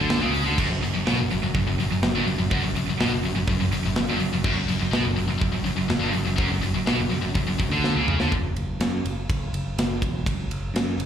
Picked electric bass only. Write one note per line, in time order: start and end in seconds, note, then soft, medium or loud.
0.00 0.21 D2 loud
0.24 0.45 C#2 loud
0.48 0.58 D2 medium
0.58 0.69 F#1 medium
0.72 0.82 F#1 medium
0.83 0.94 F#1 medium
0.97 1.07 F#1 medium
1.07 1.18 B1 medium
1.20 1.30 F#1 medium
1.33 1.42 F#1 medium
1.43 1.53 F#1 medium
1.54 1.65 F#1 medium
1.69 1.78 F#1 medium
1.78 1.89 F#1 medium
1.90 2.00 F#1 medium
2.01 2.13 F#1 medium
2.13 2.25 G1 loud
2.26 2.38 F#1 medium
2.38 2.50 F#1 medium
2.51 2.63 F#1 loud
2.64 2.75 F#1 medium
2.76 2.86 F#1 medium
2.87 2.98 F#1 medium
2.99 3.10 B1 medium
3.12 3.23 F#1 medium
3.24 3.34 F#1 medium
3.34 3.46 F#1 medium
3.47 3.59 F#1 medium
3.60 3.70 F#1 medium
3.71 3.83 F#1 medium
3.84 3.95 F#1 medium
3.97 4.08 F#1 medium
4.09 4.19 G1 medium
4.20 4.31 F#1 medium
4.33 4.43 F#1 medium
4.44 4.55 F#1 loud
4.55 4.67 F#1 medium
4.69 4.80 F#1 medium
4.81 4.92 F#1 medium
4.93 5.04 B1 medium
5.05 5.15 F#1 medium
5.16 5.27 F#1 medium
5.28 5.40 F#1 medium
5.41 5.52 F#1 medium
5.53 5.64 F#1 medium
5.65 5.76 F#1 medium
5.77 5.89 F#1 medium
5.90 6.00 F#1 medium
6.00 6.12 G1 loud
6.13 6.25 F#1 medium
6.26 6.37 F#1 medium
6.38 6.49 F#1 medium
6.50 6.61 F#1 medium
6.63 6.74 F#1 medium
6.75 6.86 F#1 medium
6.87 6.98 B1 medium
7.00 7.11 F#1 medium
7.11 7.22 F#1 medium
7.23 7.34 F#1 medium
7.35 7.46 F#1 medium
7.47 7.59 F#1 medium
7.59 7.68 F#1 medium
7.69 7.93 D2 loud
7.94 8.18 C#2 medium
8.20 8.31 D2 medium
8.32 8.53 F#1 medium
8.56 8.77 F#1 medium
8.80 9.01 F#2 medium
9.05 9.26 F#1 medium
9.29 9.50 F#1 medium
9.53 9.74 F#1 medium
9.77 9.98 F#1 medium
10.02 10.23 E1 medium
10.27 10.48 F#1 medium
10.50 10.72 F#1 medium
10.74 10.96 F#2 medium
10.98 11.06 F#1 medium